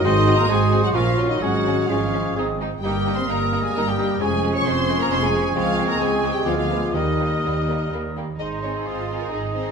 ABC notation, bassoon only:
X:1
M:3/4
L:1/8
Q:1/4=130
K:Abmix
V:1 name="Bassoon" clef=bass
A,2 A,2 F, G, | A,2 A,2 A, z | [K:Ab] G,6 | F,6 |
A,6 | G,4- G, z | A,4 A,2 |]